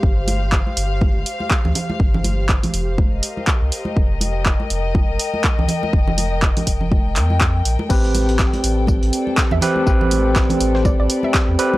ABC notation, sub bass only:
X:1
M:4/4
L:1/16
Q:"Swing 16ths" 1/4=122
K:F
V:1 name="Sub bass" clef=bass
G,,,4- G,,, z G,,,3 G,,, z3 D,, z2 | G,,,4- G,,, z F,,,3 F,,, z3 C,, z2 | F,,,4- F,,, z F,,,3 F,,, z3 C,, z2 | F,,,4- F,,, z F,,,3 F,,, F,,4 B,,, z |
A,,,4- A,,, z A,,,3 A,,, z3 E,, z2 | A,,,4- A,,, z A,,,3 A,,, z3 E,, z2 |]